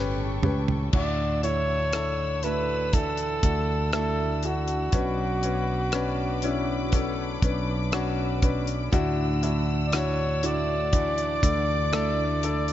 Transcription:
Already playing: G1 A2 E3 C#4 G4 A4 B4 G5 C#6
0.42 C#2 C#4 G4 B4, mid tom
0.68 floor tom
0.93 D2 A2 D3 D4 E4 F#4 D5 F#5 E6, kick, crash
1.43 D4 E4 A4 C#5, closed hi-hat
1.93 D4 E4 A4, cross-stick, closed hi-hat
2.43 A3 D4 E4 F#4 A4 B4, closed hi-hat
2.93 E3 D4 E4 A4, kick, closed hi-hat
3.17 closed hi-hat
3.43 D2 D4 E4 F#4, kick, closed hi-hat
3.93 A3 D4 E4 F#4 A4, cross-stick, closed hi-hat
4.43 D4 E4 F#4, closed hi-hat
4.68 closed hi-hat
4.92 B1 B2 C#4 D4 F#4 B4 B5 D6, kick, closed hi-hat
5.43 C#4 D4 B4, closed hi-hat
5.92 C#4 D4 B4, cross-stick, closed hi-hat
6.42 C#4 D4 E4 F#4, closed hi-hat
6.92 F#3 C#4 D4 A4, kick, closed hi-hat
7.42 B1 C#4 D4 B4, kick, closed hi-hat
7.92 C#4 D4 F#4, cross-stick, closed hi-hat
8.42 C#4 D4 B4, kick, closed hi-hat
8.67 closed hi-hat
8.92 D2 A2 D3 D4 E4 F#4 F#5 E6, kick, closed hi-hat
9.42 D4 E4 F#4, closed hi-hat
9.87 D5
9.92 D4 E4 F#4, cross-stick, closed hi-hat
9.97 C#5
10.43 A3 D4 E4 F#4 D5, closed hi-hat
10.92 E3 D4 E4 F#4 D6, kick, closed hi-hat
11.18 closed hi-hat
11.42 D2 D4 E4 A4, kick, closed hi-hat
11.92 A3 D4 E4 F#4 A4, cross-stick, closed hi-hat
12.43 D4 E4 A4, closed hi-hat
12.68 closed hi-hat

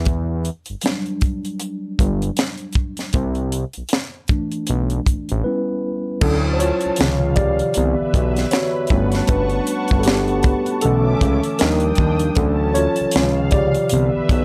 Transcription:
Already playing: E2
0.05 kick, closed hi-hat
0.45 closed hi-hat
0.66 closed hi-hat
0.70 G1
0.81 F#3 G3 D4, closed hi-hat
0.86 snare
1.06 closed hi-hat
1.21 kick, closed hi-hat
1.45 closed hi-hat
1.60 closed hi-hat
1.99 G1, kick, closed hi-hat
2.22 closed hi-hat
2.37 snare, closed hi-hat
2.58 closed hi-hat
2.73 kick, closed hi-hat
2.97 snare, closed hi-hat
3.13 C2, kick, closed hi-hat
3.35 closed hi-hat
3.52 closed hi-hat
3.73 closed hi-hat
3.77 B1
3.89 closed hi-hat
3.93 snare
4.28 E3 A3 D4, kick, closed hi-hat
4.52 closed hi-hat
4.67 B1, closed hi-hat
4.90 closed hi-hat
5.06 A1, kick, closed hi-hat
5.29 A1, closed hi-hat
5.44 G3 B3 C#4 E4 B4
6.21 D2 F#3 C#4 E4 A4 A5, kick, crash
6.53 C5
6.59 F4 C#5, closed hi-hat
6.81 closed hi-hat
6.86 C#2
6.96 C3 D#3 F3 F5, closed hi-hat
7.00 C#2, snare
7.36 G4 D5, kick, closed hi-hat
7.59 closed hi-hat
7.74 C2 D3 E3 B3 B4 E5, closed hi-hat
8.01 B1
8.14 B1, kick, closed hi-hat
8.36 snare, closed hi-hat
8.51 F#4 C#5, snare, closed hi-hat
8.87 G3 C#4 F#5 A5 C#6, kick, closed hi-hat
8.91 G1 A3 B3
9.12 snare, closed hi-hat
9.27 G1 D4 B4, kick, closed hi-hat
9.50 closed hi-hat
9.67 closed hi-hat
9.88 kick, closed hi-hat
9.92 G1
10.00 A4, closed hi-hat
10.05 B3 G4, snare
10.28 closed hi-hat
10.43 kick, closed hi-hat
10.66 closed hi-hat
10.81 B1 D3 E3 A3 C#4 A4 E5 D6, closed hi-hat
11.21 C#2, kick, closed hi-hat
11.43 closed hi-hat
11.59 D#2 F3 G3 D4 A#4 G5 D#6, snare, closed hi-hat
11.80 closed hi-hat
11.95 D#2, kick, closed hi-hat
12.19 closed hi-hat
12.35 D2 E3 F#3 C#4 A4 A5, kick, closed hi-hat
12.74 F4 C#5, closed hi-hat
12.96 closed hi-hat
13.01 C#2
13.11 C3 D#3 F3 F5, closed hi-hat
13.16 C#2, snare
13.51 G4 D5, kick, closed hi-hat
13.74 closed hi-hat
13.89 C2 D3 E3 B3 B4 E5, closed hi-hat
14.16 B1
14.29 B1, kick, closed hi-hat

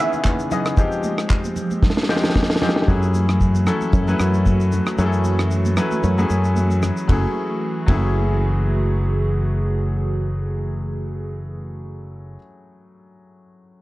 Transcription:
Already playing: C#3 C#4 B4
0.00 D#3 E3 B3 C#4 G#4 E5
0.13 high conga, shaker
0.25 kick, clap, high conga, shaker
0.39 shaker
0.51 E3 B3 C#4 D#4 G#4 D#5, low conga, shaker
0.66 cross-stick, shaker
0.77 F3 G#3 C4 D#4 G4, kick, shaker
0.92 shaker
1.04 high conga, shaker
1.18 cross-stick, shaker
1.30 kick, clap, shaker
1.44 high conga, shaker
1.56 low conga, shaker
1.71 high conga, shaker
1.83 kick, snare, low conga
1.90 snare
1.97 snare, high conga
2.03 snare
2.09 F3 G#3 C4 D#4 G4, snare
2.16 snare
2.24 snare, high conga
2.30 snare
2.35 kick, snare, high conga
2.43 snare
2.50 snare
2.56 snare
2.62 F3 G#3 C4 D#4 G4, snare, low conga
2.69 snare
2.76 snare
2.82 snare
2.88 F#2 E3 F#3 A3 C#4 E4 F#4 G#4, kick, shaker
3.03 shaker
3.14 high conga, shaker
3.29 cross-stick, shaker
3.41 kick, shaker
3.55 high conga, shaker
3.67 F#3 A3 C#4 E4 A4, cross-stick, low conga, shaker
3.81 high conga, shaker
3.93 F#2, kick, low conga, shaker
4.07 F#3 A3 C#4 E4 B4, high conga, shaker
4.19 F#2, cross-stick, shaker
4.34 shaker
4.46 kick, high conga, shaker
4.60 shaker
4.72 low conga, shaker
4.87 cross-stick, shaker
4.99 F#2 F#3 A3 C#4 E4 G#4, shaker
5.06 A4
5.13 shaker
5.25 high conga, shaker
5.39 cross-stick, shaker
5.51 shaker
5.66 high conga, shaker
5.77 F#3 A3 C#4 E4 B4, cross-stick, low conga, shaker
5.92 high conga, shaker
6.04 F#2, low conga, shaker
6.18 F#3 A3 C#4 E4 G#4, high conga, shaker
6.30 F#2, shaker
6.44 shaker
6.56 high conga, shaker
6.71 shaker
6.83 cross-stick, low conga, shaker
6.97 shaker
7.07 F#1 E3 F#3 A3 C#4 E4 F#4 G#4, kick, ride, high conga
7.12 G#4
7.86 F#1 F#3 A3 C#4 E4, kick, ride, high conga
7.90 G#4

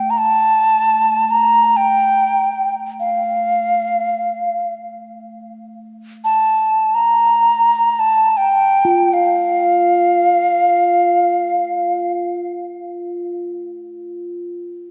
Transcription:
Already playing: A3 G5
0.10 A#5
0.18 A5
1.30 A#5
1.77 G5
3.00 F5
6.24 A5
6.95 A#5
8.00 A5
8.37 G5
8.85 F4
9.14 F5

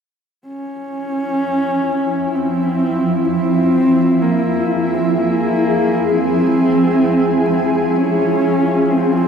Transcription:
0.47 C#4 E4
0.92 F3
2.35 C4
3.28 C4
3.75 G#4
4.22 A#3
4.94 C4
5.19 A#3
6.10 C4
7.49 C4
7.97 C#4 F4
8.91 C4

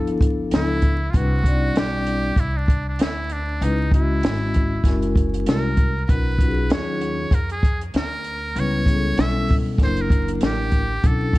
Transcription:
Already playing: G1 F3 B3 D4 E4 A4
0.07 closed hi-hat
0.21 kick, closed hi-hat
0.51 C#2 E4, snare, closed hi-hat
0.82 kick, closed hi-hat
1.11 C2 G3 C4 D4 E4 F4, kick, closed hi-hat
1.16 F#4 B4
1.44 G3 C4 D4 D#4 D5, kick, closed hi-hat
1.53 E4
1.75 B1 G4, snare, closed hi-hat
2.07 closed hi-hat
2.36 C2 E4, kick, closed hi-hat
2.57 D4
2.68 kick, closed hi-hat
2.89 D4
2.99 D2 E4, snare, closed hi-hat
3.30 D4, closed hi-hat
3.60 C#2 G#3 C#4 D#4 E4 B4, closed hi-hat
3.91 G#3 C#4 E4 F#4 D#5, kick, closed hi-hat
4.23 G#1, snare, closed hi-hat
4.54 kick, closed hi-hat
4.84 F#1 G#3 C#4 E4 F#4 A#4, kick, snare, closed hi-hat
5.02 closed hi-hat
5.16 kick, closed hi-hat
5.34 closed hi-hat
5.46 C2 A#4, snare, closed hi-hat
5.77 kick, closed hi-hat
6.05 F#3 C#4 A#4
6.09 B1 D#4 F4 A#4 B4, kick, closed hi-hat
6.39 F#3 C#4 D#4 F4 F#4, kick, closed hi-hat
6.48 G#4
6.70 D#2 C#5, snare, closed hi-hat
7.01 closed hi-hat
7.31 F2 A#4, kick, closed hi-hat
7.50 G#4, closed hi-hat
7.63 kick, closed hi-hat
7.81 closed hi-hat
7.94 D2 A#4, snare, closed hi-hat
8.24 closed hi-hat
8.55 C#2 G3 B3 C#4 E4 B4, closed hi-hat
8.60 C#5
8.86 G3 B3 C#4 E4 G#4, kick, closed hi-hat
8.95 A4
9.17 B1 E5, snare, closed hi-hat
9.48 kick, open hi-hat
9.78 F#1 F#3 A#3 D4 E4 A#4, kick, snare, closed hi-hat
9.84 C5
9.97 closed hi-hat
10.02 A#4
10.10 kick, closed hi-hat
10.28 closed hi-hat
10.41 A1, snare, closed hi-hat
10.45 G4
10.72 kick, closed hi-hat
11.02 B1 F#3 C#4 D4 E4 A4, kick, closed hi-hat
11.07 A4
11.33 F#3 C#4 D4 E4, kick

